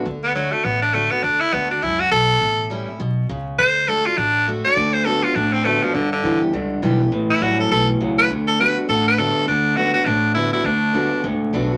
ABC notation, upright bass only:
X:1
M:4/4
L:1/8
Q:"Swing" 1/4=204
K:D
V:1 name="Upright bass" clef=bass
D,,4 A,,,4 | D,,2 D,,2 C,,2 B,,,2 | A,,,4 B,,,2 C,,2 | D,,4 A,,,4 |
D,,4 A,,,4 | G,,,2 D,,2 C,,2 B,,,2 | A,,,2 A,,,2 B,,,2 C,,2 | D,,4 A,,,4 |
D,,4 A,,,4 | D,,4 C,,2 B,,,2 |]